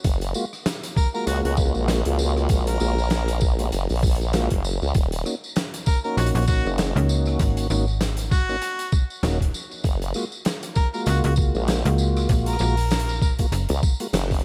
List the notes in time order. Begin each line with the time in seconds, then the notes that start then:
0.04 F#1, kick, closed hi-hat, tambourine
0.21 closed hi-hat, tambourine
0.34 G#3 A#3 F4 F#4, tambourine
0.53 cross-stick, tambourine
0.66 snare, closed hi-hat, tambourine
0.83 closed hi-hat, tambourine
0.96 A#4, kick, tambourine
1.14 G#3 A#3 F4 F#4 A#4, tambourine
1.27 C#2 F#4, closed hi-hat, tambourine
1.45 C#2 F#4, closed hi-hat
1.57 G#3 A#3 F4 F#4, kick, tambourine
1.75 A#1, tambourine
1.88 snare, closed hi-hat, tambourine
2.05 C#2 G#3 A#3 F4 F#4, cross-stick, closed hi-hat
2.19 tambourine
2.37 cross-stick, tambourine
2.49 A#1, kick, closed hi-hat, tambourine
2.67 A#4, closed hi-hat, tambourine
2.80 A#1 G#3 A#3 F4 F#4, cross-stick, tambourine
2.98 tambourine
3.10 snare, closed hi-hat, tambourine
3.28 closed hi-hat, tambourine
3.41 kick, tambourine
3.59 G#3 A#3 F4 F#4, closed hi-hat, tambourine
3.72 F#1, closed hi-hat, tambourine
3.89 A#1, closed hi-hat, tambourine
3.92 closed hi-hat
3.96 closed hi-hat
3.99 closed hi-hat
4.02 kick, closed hi-hat, tambourine
4.07 closed hi-hat
4.11 closed hi-hat
4.15 closed hi-hat
4.21 tambourine
4.33 G#3 A#3 F4 F#4, cross-stick, snare, closed hi-hat, tambourine
4.50 F#1, kick, closed hi-hat
4.64 tambourine
4.82 C#2, tambourine
4.94 D#1, kick, closed hi-hat, tambourine
5.12 closed hi-hat, tambourine
5.26 A#3 C#4 D#4 F#4, cross-stick, tambourine
5.44 tambourine
5.56 snare, closed hi-hat, tambourine
5.74 closed hi-hat, tambourine
5.86 A#4, kick, tambourine
6.04 A#3 C#4 D#4 F#4 A#4, tambourine
6.17 A#1 F#4, closed hi-hat, tambourine
6.26 closed hi-hat
6.35 A#1 F#4, closed hi-hat
6.42 closed hi-hat
6.47 A#3 C#4 D#4 F#4, kick, tambourine
6.65 F#1, tambourine
6.78 snare, closed hi-hat, tambourine
6.96 C#2 A#3 C#4 D#4 F#4, cross-stick, closed hi-hat
7.09 tambourine
7.26 cross-stick, tambourine
7.39 G#1, kick, closed hi-hat, tambourine
7.57 closed hi-hat, tambourine
7.70 G#1 A#3 C#4 D#4 F#4, cross-stick, tambourine
7.88 tambourine
8.01 snare, closed hi-hat, tambourine
8.17 closed hi-hat, tambourine
8.31 F#4, kick, tambourine
8.49 A#3 C#4 D#4 F#4, tambourine
8.62 closed hi-hat, tambourine
8.79 closed hi-hat, tambourine
8.92 kick, tambourine
9.10 tambourine
9.23 D#1 A#3 C#4 D#4 F#4, cross-stick, snare, closed hi-hat, tambourine
9.41 kick, closed hi-hat
9.54 tambourine
9.71 tambourine
9.84 F#1, kick, closed hi-hat, tambourine
10.02 closed hi-hat, tambourine
10.14 G#3 A#3 F4 F#4, cross-stick, tambourine
10.32 tambourine
10.45 snare, closed hi-hat, tambourine
10.63 closed hi-hat, tambourine
10.75 A#4, kick, tambourine
10.94 G#3 A#3 F4 F#4 A#4, tambourine
11.06 C#2 F#4, closed hi-hat, tambourine
11.24 C#2 F#4, closed hi-hat
11.36 G#3 A#3 F4 F#4, kick, tambourine
11.55 A#1, tambourine
11.68 snare, closed hi-hat, tambourine
11.85 C#2 G#3 A#3 F4 F#4, cross-stick, closed hi-hat
11.98 tambourine
12.16 cross-stick, tambourine
12.29 A#1, kick, closed hi-hat, tambourine
12.46 A#4, closed hi-hat, tambourine
12.53 cross-stick
12.59 A#1 G#3 A#3 F4 F#4, tambourine
12.77 closed hi-hat, tambourine
12.80 closed hi-hat
12.84 closed hi-hat
12.87 closed hi-hat
12.91 snare, closed hi-hat, tambourine
12.95 closed hi-hat
13.00 closed hi-hat
13.04 closed hi-hat
13.09 tambourine
13.22 kick, tambourine
13.39 G#3 A#3 F4 F#4, kick, closed hi-hat, tambourine
13.52 F#1, closed hi-hat, tambourine
13.69 C#2, closed hi-hat, tambourine
13.83 kick, tambourine
14.00 G#3 A#3 F4 F#4, closed hi-hat, tambourine
14.13 F#1, cross-stick, snare, closed hi-hat, tambourine
14.31 kick, closed hi-hat, tambourine
14.34 closed hi-hat
14.39 closed hi-hat